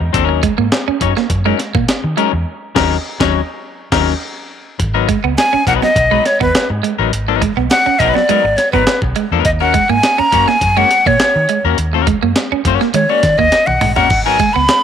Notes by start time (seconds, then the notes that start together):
0.00 E2
0.13 D#2 F3 C4 D4 A4, kick, closed hi-hat
0.24 F#3 C#4 D#4 A#4
0.29 muted clean electric guitar stroke
0.43 G#3, kick, closed hi-hat
0.57 G#2 A#3, muted clean electric guitar stroke
0.72 muted clean electric guitar stroke, snare, closed hi-hat
0.88 C#4, muted fingered electric bass stroke
1.01 F#2 F#3 C#4 D#4 C#5, muted clean electric guitar stroke, kick, closed hi-hat
1.16 A#3, muted clean electric guitar stroke, snare
1.30 F#2, muted clean electric guitar stroke, kick, closed hi-hat
1.45 F#3 G#3 C#4 D#4 A#4
1.59 muted clean electric guitar stroke, snare, closed hi-hat
1.75 A#2 A#3, muted clean electric guitar stroke, kick
1.88 snare, closed hi-hat
2.04 D#3, muted clean electric guitar stroke
2.17 F#3 G#3 C#4 D#4 A#4, closed hi-hat
2.33 E2, muted clean electric guitar stroke
2.75 D#2 F#3 C#4 D#4 A#4, kick, snare, crash
3.20 D#2 F#3 C#4 D#4 C#5, kick, snare
3.92 D#2 F#3 C#4 D#4 A#4, kick, snare, crash
4.79 G#1, muted clean electric guitar stroke, kick, closed hi-hat
4.94 F#3 B3 D#4 A#4, muted clean electric guitar stroke
5.09 G#3, muted clean electric guitar stroke, kick, closed hi-hat
5.24 C#2 B3, muted clean electric guitar stroke
5.38 G#5, snare, closed hi-hat
5.53 C#4, muted clean electric guitar stroke, muted fingered electric bass stroke
5.67 B1 F#3 B3 D#4 B4 F#5, muted clean electric guitar stroke, kick, closed hi-hat
5.82 B3 D#5, muted clean electric guitar stroke, snare
5.96 B1, muted clean electric guitar stroke, kick, closed hi-hat
6.11 F#3 G#3 B3 D#4 B4
6.25 C#5, muted clean electric guitar stroke, snare, closed hi-hat
6.40 D#2 B3 B4, muted clean electric guitar stroke, kick
6.54 muted clean electric guitar stroke, snare, closed hi-hat
6.70 G#2, muted clean electric guitar stroke
6.83 G#3, closed hi-hat
6.99 A1 F#3 B3 D#4 A#4
7.12 G#1, muted clean electric guitar stroke, closed hi-hat
7.28 F#3 B3 D#4 A#4, muted clean electric guitar stroke
7.41 G#3, muted clean electric guitar stroke, kick, closed hi-hat
7.57 B1 B3, muted clean electric guitar stroke
7.70 F#5, snare, closed hi-hat
7.86 C#4, muted clean electric guitar stroke, muted fingered electric bass stroke
7.99 B1 F#3 B3 D#4 B4 D#5, muted clean electric guitar stroke, kick, closed hi-hat
8.14 B3 D5, muted clean electric guitar stroke, snare
8.29 F#3 G#3 B3 D#4 A#4, muted fingered electric bass stroke, closed hi-hat
8.44 G#1, muted clean electric guitar stroke
8.57 C#5, muted clean electric guitar stroke, snare, closed hi-hat
8.72 G#1 F#3 B3 D#4 A#4 B4, kick
8.87 muted fingered electric bass stroke, muted clean electric guitar stroke, snare, closed hi-hat
9.02 B1, muted clean electric guitar stroke, kick
9.16 G#3, closed hi-hat
9.32 E2 F#3 B3 D#4 A#4
9.45 D#2 D#5, kick, closed hi-hat
9.60 A#3 C#4 F#4 A#4 F#5, muted clean electric guitar stroke
9.74 G#3, muted clean electric guitar stroke, kick, closed hi-hat
9.89 G#2 A#3 G#5, muted clean electric guitar stroke
10.03 snare, closed hi-hat
10.18 C#4 A#5, muted clean electric guitar stroke, muted fingered electric bass stroke
10.32 F#2 A#3 C#4 F#4 C#5, muted clean electric guitar stroke, kick, closed hi-hat
10.48 A#3 G#5, muted clean electric guitar stroke, snare
10.61 F#2, muted clean electric guitar stroke, kick, closed hi-hat
10.76 G#3 A#3 C#4 F#4 C#5 F#5
10.91 muted clean electric guitar stroke, snare, closed hi-hat
11.06 A#2 A#3 C#5, muted clean electric guitar stroke, kick
11.20 muted clean electric guitar stroke, snare, closed hi-hat
11.36 D#3, muted clean electric guitar stroke
11.49 G#3, closed hi-hat
11.64 E2 A#3 C#4 F#4 A#4
11.78 D#2, closed hi-hat
11.93 A#3 C#4 F#4 A#4, muted clean electric guitar stroke
12.07 G#3, kick, closed hi-hat
12.22 F#2 A#3, muted clean electric guitar stroke
12.36 snare, closed hi-hat
12.52 C#4, muted fingered electric bass stroke, muted clean electric guitar stroke
12.65 F#2 A#3 C#4 F#4 C#5, muted clean electric guitar stroke, kick, closed hi-hat
12.81 A#3, muted clean electric guitar stroke, snare
12.94 D#3 G#3 C#5, muted clean electric guitar stroke, closed hi-hat
13.09 A#3 C#4 F#4 C#5 D5, muted clean electric guitar stroke
13.23 D#3, muted clean electric guitar stroke, kick, snare, closed hi-hat
13.38 D#2 A#3 D#5, muted clean electric guitar stroke, kick
13.52 muted clean electric guitar stroke, snare, closed hi-hat
13.66 B1 F#5, muted clean electric guitar stroke, high tom
13.81 A#1 G#3, mid tom, open hi-hat
13.95 A1 A#3 C#4 F#4 A#4 F#5, floor tom
14.10 G#1, kick, crash
14.25 F#3 B3 D#4 A#4 G#5, muted clean electric guitar stroke
14.39 G#3, muted clean electric guitar stroke, kick, closed hi-hat
14.53 C#2 B3 B5, muted clean electric guitar stroke
14.69 snare, closed hi-hat